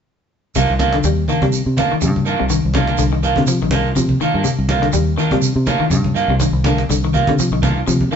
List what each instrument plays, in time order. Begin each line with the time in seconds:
0.55 fingered electric bass C2, clean electric guitar C3 D#3 A#3 D4 F4, cajon bass, high conga, shekere
0.70 fingered electric bass C2
0.79 clean electric guitar D#3 A#3 D4 F4, cajon slap, high conga, shekere
0.93 clean electric guitar D3, cajon slap
1.04 fingered electric bass D#2, clean electric guitar G3, cajon bass, cajon slap, high conga, shekere
1.17 cajon slap
1.28 clean electric guitar D#3 A#3 D4, muted clean electric guitar stroke, high conga, shekere
1.42 fingered electric bass C3, clean electric guitar G3, cajon bass, high conga
1.52 cajon slap, high conga, shekere
1.66 fingered electric bass C3, cajon slap
1.76 clean electric guitar A#3 D4 F4, muted clean electric guitar stroke, cajon bass, cajon slap, high conga, shekere
1.90 clean electric guitar D#3, muted fingered electric bass stroke, cajon slap
2.01 fingered electric bass G2, clean electric guitar C3, high conga, shekere
2.16 high conga
2.25 clean electric guitar D#3 A#3 D4 F4, cajon slap, shekere
2.40 fingered electric bass C2, clean electric guitar C3
2.50 clean electric guitar D#3, cajon bass, high conga, shekere
2.63 fingered electric bass C2, cajon slap
2.74 clean electric guitar D3 D#3 A#3 D4 F4, cajon slap, high conga, shekere
2.87 clean electric guitar A#3 D4 F4, cajon slap
2.98 fingered electric bass C2, clean electric guitar D3, cajon bass, cajon slap, high conga, shekere
3.13 clean electric guitar D#3
3.23 clean electric guitar D#3 A#3 D4 F4, cajon bass, shekere
3.36 fingered electric bass C3, clean electric guitar D3, cajon bass, high conga
3.47 clean electric guitar F3, high conga, shekere
3.61 fingered electric bass C2, clean electric guitar D#3, cajon slap
3.71 clean electric guitar D#3 A#3 D4 F4, cajon bass, high conga, shekere
3.86 cajon slap
3.96 fingered electric bass C3, clean electric guitar F3, high conga, shekere
4.09 high conga
4.21 clean electric guitar D#3 A#3 D4 F4, muted fingered electric bass stroke, shekere
4.34 fingered electric bass G2, clean electric guitar A#3 D4
4.44 clean electric guitar C3, cajon bass, high conga, shekere
4.59 fingered electric bass C2
4.69 clean electric guitar D#3 A#3 F4, muted clean electric guitar stroke, cajon slap, high conga, shekere
4.82 clean electric guitar D3, cajon slap
4.93 fingered electric bass D#2, clean electric guitar G3, cajon bass, cajon slap, high conga, shekere
5.18 clean electric guitar D#3 A#3 D4 F4, shekere
5.31 fingered electric bass C3, clean electric guitar G3, cajon bass, high conga
5.42 cajon slap, high conga, shekere
5.56 fingered electric bass C3
5.66 clean electric guitar D#3 A#3 D4 F4, cajon bass, cajon slap, high conga, shekere
5.80 clean electric guitar D#3, muted fingered electric bass stroke
5.90 fingered electric bass G2, clean electric guitar C3, cajon slap, high conga, shekere
6.04 high conga
6.15 clean electric guitar D#3 A#3 D4 F4, cajon slap, shekere
6.28 fingered electric bass C2, clean electric guitar C3
6.40 clean electric guitar D#3, cajon bass, high conga, shekere
6.53 fingered electric bass C2, cajon slap
6.64 clean electric guitar D3 D#3 A#3 D4, cajon slap, high conga, shekere
6.78 cajon slap
6.89 fingered electric bass C2, clean electric guitar D3, cajon bass, cajon slap, high conga, shekere
7.05 clean electric guitar D#3
7.13 clean electric guitar D#3 A#3 F4, cajon bass, high conga, shekere
7.27 fingered electric bass C3, clean electric guitar D3, cajon bass, high conga
7.39 clean electric guitar F3, cajon slap, high conga, shekere
7.51 fingered electric bass C2, clean electric guitar D#3
7.62 clean electric guitar D#3 A#3 D4 F4, cajon bass, cajon slap, high conga, shekere
7.77 cajon slap
7.87 fingered electric bass C3, clean electric guitar F3, cajon slap, high conga, shekere
8.01 high conga
8.11 clean electric guitar D#3 A#3 D4 F4, muted fingered electric bass stroke, shekere